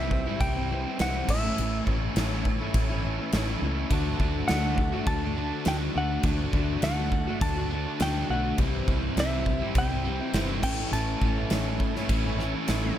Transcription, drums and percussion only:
0.11 kick
0.41 kick, crash
0.99 snare, crash
1.29 kick, crash
1.58 crash
1.87 kick
2.16 snare, crash
2.45 kick
2.74 kick, crash
3.33 snare, crash
3.91 kick, crash
4.20 kick
4.48 snare, crash
4.78 kick
5.07 kick, crash
5.65 snare, crash
6.23 kick, crash
6.53 kick
6.82 snare, crash
7.12 kick
7.41 kick, crash
8.00 snare, crash
8.58 kick, crash
8.88 kick
9.17 snare, crash
9.46 kick
9.75 kick, crash
10.33 snare, crash
10.63 kick, crash
10.93 crash
11.22 kick
11.50 snare, crash
11.80 kick
11.96 snare
12.09 kick, crash
12.39 snare
12.68 snare, crash

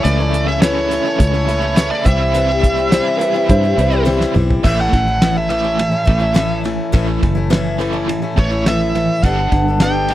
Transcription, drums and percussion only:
0.05 closed hi-hat
0.34 closed hi-hat
0.62 snare, closed hi-hat
0.91 closed hi-hat
1.20 kick, closed hi-hat
1.49 closed hi-hat
1.77 snare, closed hi-hat
2.06 kick, closed hi-hat
2.35 closed hi-hat
2.63 kick, closed hi-hat
2.92 snare, closed hi-hat
3.21 closed hi-hat
3.49 kick, closed hi-hat
3.79 closed hi-hat
4.07 high tom
4.21 snare
4.36 mid tom
4.51 floor tom
4.64 kick, crash
4.93 kick, ride
5.22 snare, ride
5.50 ride
5.79 ride
6.07 kick, ride
6.36 snare, ride
6.65 snare, ride
6.94 kick, ride
7.23 kick, ride
7.53 snare, ride
7.81 ride
8.09 ride
8.38 kick, ride
8.66 snare, ride
8.95 snare, ride
9.23 kick, ride
9.52 kick, ride
9.80 snare, ride
10.08 ride

